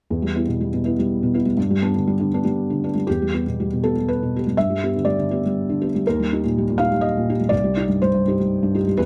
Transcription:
0.10 E2
0.22 G3
0.36 B3 E4
0.48 B2
0.60 G3
0.74 B2
0.85 B3 E4
0.99 G3
1.23 B2
1.34 B3 E4
1.46 G3
1.57 G2
1.70 G3
1.82 B3 D4
1.95 D3
2.07 G3
2.20 D3
2.34 B3 D4
2.45 G3
2.70 D3
2.84 B3 D4
2.95 G3
3.07 E2 G4
3.22 G3
3.35 B3 G4
3.47 B2
3.60 G3
3.73 B2
3.83 B3 G4 A4
3.96 G3
4.08 B4
4.23 B2
4.36 B3 G4
4.47 G3
4.57 G2 E5
4.70 G3
4.83 B3 G4
4.96 D3
5.05 G3 D5
5.18 D3
5.31 B3 G4
5.46 G3
5.69 D3
5.81 B3 G4
5.95 G3
6.07 D#2 A#4
6.19 G3
6.33 D#4 G4
6.44 A#2
6.58 G3
6.69 A#2
6.78 D#4 G4 F5
6.92 G3
7.01 D#5
7.17 A#2
7.29 D#4 G4
7.40 G3
7.49 C2 D5
7.64 G3
7.77 D#4 G4
7.88 G2
8.02 G3 C5
8.14 G2
8.28 D#4 G4
8.40 G3
8.63 G2
8.75 D#4 G4
8.87 G3
8.97 E2 B4

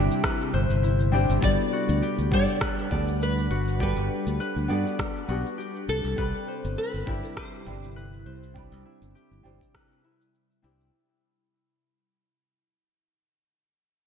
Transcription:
Already playing: C3 G3 C4 D4 E4 G4 B4 C5 E5
0.11 cabasa
0.24 B4, kick, cross-stick, cabasa
0.41 cabasa
0.54 G1 C5
0.70 G1, cabasa
0.83 E4, cabasa
1.00 cabasa
1.12 C4 D4 E4 G4 C5
1.30 G1, cabasa
1.41 G1 G3 B3 D4 F#4 B4 D5 F#5, kick, cabasa
1.45 A4
1.60 cabasa
1.73 F#4
1.89 D2, cabasa
2.02 G4, cabasa
2.19 D2, cabasa
2.31 G2 G3 B3 D4 A4 D5 F#5, kick
2.49 cabasa
2.61 B4, kick, cross-stick, cabasa
2.79 cabasa
2.90 D2 B3 D4 F#4 G4 A4 D5, kick
3.08 cabasa
3.21 B4, cabasa
3.38 cabasa
3.50 G1 F#4
3.68 cabasa
3.79 G3 B3 D4 G4 B4 F#5, kick, cabasa
3.83 A4
3.97 G1, cabasa
4.27 D2, cabasa
4.40 B4, cabasa
4.56 D2, cabasa
4.68 G2 B3 D4 F#4 G4 A4 D5
4.87 cabasa
4.99 kick, cross-stick, cabasa
5.17 cabasa
5.28 B1 B3 D4 F#4 G4 A4
5.46 cabasa
5.58 G4, cabasa
5.76 cabasa
5.88 C2 C3 E4 A4
6.04 C2, cabasa
6.16 C2 C4 D4 E4 G4 B4, kick, cabasa
6.20 B5
6.36 cabasa
6.48 C5
6.65 G1, cabasa
6.78 B4, cabasa
6.94 G1, cabasa
7.06 G1 C4 D4 E4 G4 B5, kick
7.25 cabasa
7.37 G4 C5, kick, cross-stick, cabasa
7.54 cabasa
7.66 G1 C4 D4 E4 G4 B4, kick
7.84 cabasa
7.96 B4, cabasa
8.14 cabasa
8.26 C2 C5
8.43 cabasa
8.54 C4 D4 E4 G4, kick, cabasa
8.58 B5
8.72 C2, cabasa
8.85 E4
9.02 G1, cabasa
9.15 G4, cabasa
9.31 G1, cabasa
9.43 G1 C4 D4 E4 G4 C5
9.61 kick, cabasa
9.75 B4, kick, cross-stick, cabasa
9.92 cabasa
10.04 E4
10.21 cabasa
10.35 cabasa
10.51 cabasa
10.62 C2 C4 D4 E4 G4 C5
10.81 cabasa

